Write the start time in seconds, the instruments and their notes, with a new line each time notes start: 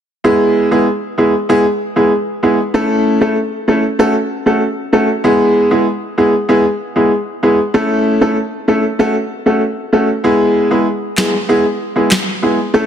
0.24 grand piano G#3 B3 E4 G#4
0.71 grand piano G#3 B3 E4 G#4
1.18 grand piano G#3 B3 E4 G#4
1.49 grand piano G#3 B3 E4 G#4
1.96 grand piano G#3 B3 E4 G#4
2.43 grand piano G#3 B3 E4 G#4
2.74 grand piano A3 C#4 E4 A4
3.21 grand piano A3 C#4 E4 A4
3.68 grand piano A3 C#4 E4 A4
3.99 grand piano A3 C#4 F#4 A4
4.46 grand piano A3 C#4 F#4 A4
4.93 grand piano A3 C#4 F#4 A4
5.24 grand piano G#3 B3 E4 G#4
5.71 grand piano G#3 B3 E4 G#4
6.17 grand piano G#3 B3 E4 G#4
6.49 grand piano G#3 B3 E4 G#4
6.96 grand piano G#3 B3 E4 G#4
7.43 grand piano G#3 B3 E4 G#4
7.74 grand piano A3 C#4 E4 A4
8.21 grand piano A3 C#4 E4 A4
8.68 grand piano A3 C#4 E4 A4
8.99 grand piano A3 C#4 F#4 A4
9.46 grand piano A3 C#4 F#4 A4
9.93 grand piano A3 C#4 F#4 A4
10.24 grand piano G#3 B3 E4 G#4
10.71 grand piano G#3 B3 E4 G#4
11.17 grand piano G#3 B3 E4 G#4, snare, clap
11.49 grand piano G#3 B3 E4 G#4
11.96 grand piano G#3 B3 E4 G#4
12.11 snare, clap
12.42 grand piano G#3 B3 E4 G#4
12.74 grand piano A3 C#4 E4 A4